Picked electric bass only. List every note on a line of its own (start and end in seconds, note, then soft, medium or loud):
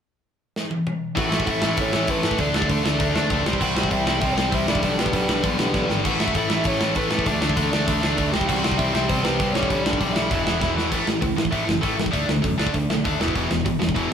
1.17 1.30 A1 medium
1.32 1.45 A1 medium
1.47 1.61 A1 medium
1.62 1.76 A1 medium
1.78 1.91 A1 medium
1.94 2.07 A1 medium
2.08 2.22 A1 medium
2.24 2.37 A2 medium
2.39 2.52 D2 loud
2.54 2.67 D2 medium
2.69 2.83 D2 medium
2.85 2.98 D2 medium
3.00 3.13 D2 medium
3.15 3.28 D2 medium
3.30 3.44 C#2 medium
3.45 3.59 C2 medium
3.61 3.74 C2 loud
3.76 3.89 C2 medium
3.91 4.04 C2 medium
4.06 4.20 C2 medium
4.22 4.35 C2 medium
4.37 4.50 C2 medium
4.52 4.66 C2 medium
4.68 4.81 B1 medium
4.83 4.96 B1 loud
4.98 5.11 B1 medium
5.13 5.27 B1 medium
5.29 5.42 B1 medium
5.44 5.57 B1 medium
5.59 5.72 B1 medium
5.74 5.87 B1 medium
5.90 6.03 G#1 medium
6.05 6.18 A1 loud
6.20 6.34 A1 medium
6.35 6.48 A1 medium
6.50 6.63 A1 medium
6.65 6.79 A1 medium
6.81 6.94 A1 medium
6.96 7.09 A1 medium
7.11 7.28 A2 medium
7.26 7.40 D2 loud
7.42 7.55 D2 medium
7.57 7.70 D2 medium
7.72 7.86 D2 medium
7.88 8.01 D2 medium
8.03 8.16 D2 medium
8.18 8.32 D2 medium
8.34 8.47 C2 medium
8.49 8.62 C2 medium
8.65 8.78 C2 medium
8.79 8.92 C2 medium
8.93 9.07 C2 medium
9.09 9.23 C2 loud
9.25 9.38 C2 medium
9.39 9.53 C2 medium
9.55 9.69 B1 medium
9.70 9.83 B1 loud
9.86 9.99 B1 medium
10.01 10.14 B1 medium
10.16 10.29 B1 medium
10.31 10.44 E1 medium
10.46 10.59 E1 medium
10.62 10.75 E1 medium
10.76 10.90 E2 medium
10.92 11.01 A1 medium
11.06 11.16 A1 medium
11.22 11.32 C#2 medium
11.36 11.46 A1 medium
11.52 11.62 A1 medium
11.67 11.77 F#1 medium
11.83 11.93 A1 medium
11.98 12.08 A1 medium
12.13 12.23 D2 medium
12.29 12.38 D2 medium
12.44 12.54 F#2 medium
12.60 12.69 D2 medium
12.75 12.84 D2 medium
12.89 12.99 B1 medium
13.05 13.15 D#2 medium
13.20 13.30 E1 medium
13.35 13.45 E1 medium
13.51 13.60 E1 medium
13.66 13.75 G#1 medium
13.81 13.90 E1 medium
13.96 14.05 E1 medium